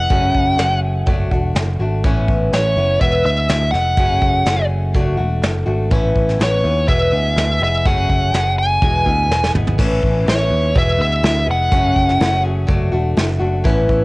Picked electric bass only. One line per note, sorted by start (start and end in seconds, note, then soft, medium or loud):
0.10 0.32 F#1 medium
0.35 0.57 F#1 medium
0.58 1.03 F#1 medium
1.07 1.29 F#1 medium
1.31 1.54 E1 medium
1.55 1.78 F#1 medium
1.79 2.04 G#1 medium
2.04 2.26 A1 medium
2.28 2.50 A1 medium
2.52 2.75 A1 medium
2.76 2.99 F#1 medium
3.01 3.23 E1 medium
3.25 3.47 D2 medium
3.49 3.71 D2 medium
3.73 3.95 F1 medium
3.97 4.20 F#1 medium
4.22 4.44 F#1 medium
4.46 4.94 F#1 medium
4.94 5.17 F#1 medium
5.18 5.41 E1 medium
5.42 5.65 F#1 medium
5.67 5.89 G#1 medium
5.91 6.13 A1 medium
6.15 6.38 A1 medium
6.39 6.62 A1 medium
6.64 6.86 D#2 medium
6.88 7.10 E1 medium
7.12 7.34 D2 medium
7.36 7.59 D2 medium
7.61 7.83 F1 medium
7.85 8.07 F#1 medium
8.10 8.32 F#1 medium
8.33 8.78 F#1 medium
8.82 9.04 E1 medium
9.06 9.28 D2 medium
9.29 9.52 E1 medium
9.54 9.76 G#1 medium
9.79 10.01 A1 medium
10.03 10.25 A1 medium
10.26 10.49 A1 medium
10.50 10.73 D#2 medium
10.76 10.97 E1 medium
10.99 11.21 D2 medium
11.23 11.45 D2 medium
11.48 11.70 F1 medium
11.72 11.94 F#1 medium
11.96 12.18 F#1 medium
12.20 12.65 F#1 medium
12.68 12.90 F#1 medium
12.92 13.15 E1 medium
13.17 13.39 F#1 medium
13.41 13.63 F#1 medium
13.65 13.87 A1 loud
13.89 14.04 A1 medium